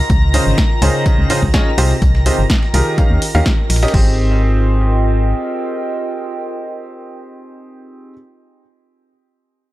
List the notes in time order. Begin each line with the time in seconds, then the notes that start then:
Already playing: F4 A#4 D#5 G5 A#5 A#6
0.10 C#2, kick, closed hi-hat
0.34 C#3 C#4 D#4 F4 G#4 C5, closed hi-hat, open hi-hat
0.47 G#1
0.58 kick, snare, closed hi-hat
0.82 C#2 C#3 C#4 D#4 F4 G#4 C5, closed hi-hat, open hi-hat
1.06 kick, closed hi-hat
1.19 C#2
1.30 C#3 C#4 D#4 F4 G#4 C5, closed hi-hat, open hi-hat
1.43 C#2, kick
1.54 C#4 D#4 F4 G#4 C#5, kick, snare, closed hi-hat
1.78 C2 C3 D#4 F4 G4 G#4 C5, closed hi-hat, open hi-hat
1.91 closed hi-hat
2.02 C2, kick, closed hi-hat
2.15 snare
2.26 C3 D#4 F4 G4 G#4 C5, closed hi-hat, open hi-hat
2.39 G1
2.50 kick, snare, closed hi-hat
2.63 snare
2.74 C2 D#3 D#4 F4 G4 G#4 A#4, closed hi-hat, open hi-hat
2.98 D#3 C#4 D#4 G4 A#4 F5, kick, closed hi-hat
3.11 D#2
3.22 closed hi-hat, open hi-hat
3.35 D#2 D#3 C#4 D#4 G4 A#4 F5, closed hi-hat
3.46 kick, snare, closed hi-hat
3.70 A#1, snare, closed hi-hat, open hi-hat
3.76 snare, closed hi-hat
3.83 C#4 D#4 G4 A#4 D#5, snare, closed hi-hat
3.88 snare, closed hi-hat
3.94 G#1 C4 D#4 F4 G4 G#4 C5, kick, crash
4.02 A#4
4.09 D#5
4.16 G5